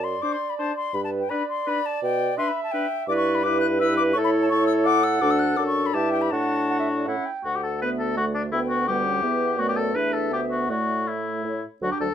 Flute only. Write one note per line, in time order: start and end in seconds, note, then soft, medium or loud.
0.04 0.23 C6 medium
0.22 0.34 D6 medium
0.32 0.51 C6 medium
0.49 0.57 B5 medium
0.58 0.75 A5 medium
0.76 0.95 C6 medium
0.94 1.03 B5 medium
1.04 1.10 A5 medium
1.20 1.31 G5 medium
1.29 1.47 B5 medium
1.49 1.70 C6 medium
1.68 1.87 B5 medium
1.85 2.03 A5 medium
2.03 2.37 G5 medium
2.38 2.49 C6 medium
2.48 2.63 B5 medium
2.63 2.73 A5 medium
2.71 3.07 G5 medium
3.07 3.16 D6 loud
3.16 3.36 C#6 medium
3.35 3.44 B5 medium
3.43 3.59 D6 medium
3.60 3.66 F#6 medium
3.80 3.96 E6 loud
3.97 4.03 D6 loud
4.13 4.17 C#6 loud
4.24 4.30 B5 medium
4.42 4.46 A5 medium
4.49 4.66 C#6 medium
4.66 4.72 E6 loud
4.84 5.05 D6 loud
5.03 5.23 E6 loud
5.21 5.32 D6 loud
5.30 5.40 E6 medium
5.39 5.58 F#6 loud
5.56 5.66 D6 medium
5.67 5.87 C#6 medium
5.86 5.95 B5 medium
5.93 6.12 A5 medium
6.12 6.23 G5 medium
6.21 6.32 B5 medium
6.30 7.07 A5 medium
7.45 7.83 F#5 soft
7.82 8.18 E5 soft
8.16 8.52 D5 soft
8.53 8.90 G5 medium
8.89 9.25 F#5 medium
9.23 9.58 E5 medium
9.59 9.94 D5 medium
9.95 10.72 E5 medium
10.70 11.14 D5 soft
11.44 11.63 C#5 soft
11.82 11.88 D5 medium
12.00 12.06 D5 soft